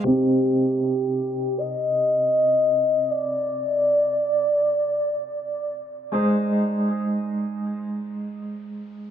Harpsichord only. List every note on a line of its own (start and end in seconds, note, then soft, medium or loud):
0.04 6.08 C3 medium
0.04 6.09 C4 medium
0.04 6.09 D#4 medium
0.04 6.09 G4 medium
6.12 9.11 G#3 medium
6.12 9.11 D#4 medium
6.12 9.11 G#4 medium
6.12 9.11 C5 medium